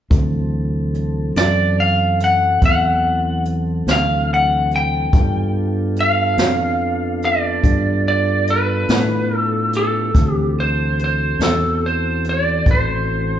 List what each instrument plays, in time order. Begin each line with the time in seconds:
0.10 fingered electric bass D2, tonewheel organ E3 F#3 C4 A4, kick, closed hi-hat
0.94 closed hi-hat
1.36 fingered electric bass F#2, lead electric guitar D5, snare, closed hi-hat
1.80 lead electric guitar F5
2.20 lead electric guitar F#5, closed hi-hat
2.62 fingered electric bass E2, lead electric guitar F#5, kick, closed hi-hat
3.45 closed hi-hat
3.87 fingered electric bass D2, snare, closed hi-hat
3.91 lead electric guitar F5
4.34 lead electric guitar F#5
4.71 closed hi-hat
4.76 lead electric guitar G5
5.12 fingered electric bass G2, tonewheel organ B3 D4 F4 A4, kick, closed hi-hat
5.96 closed hi-hat
6.00 lead electric guitar F5
6.37 fingered electric bass F2, snare, closed hi-hat
7.22 lead electric guitar D5, closed hi-hat
7.63 fingered electric bass G2, kick, closed hi-hat
8.08 lead electric guitar D5
8.47 lead electric guitar B4, closed hi-hat
8.89 fingered electric bass A2, snare, closed hi-hat
9.37 lead electric guitar A4
9.73 lead electric guitar A4, closed hi-hat
10.15 fingered electric bass D2, tonewheel organ E3 C4 F#4 A4, kick, closed hi-hat
10.33 lead electric guitar G4
10.60 lead electric guitar C5
10.99 closed hi-hat
11.04 lead electric guitar C5
11.39 fingered electric bass E2, lead electric guitar A4, snare, closed hi-hat
11.86 lead electric guitar C5
12.24 closed hi-hat
12.29 lead electric guitar D5
12.66 fingered electric bass A1, kick, closed hi-hat
12.71 lead electric guitar C5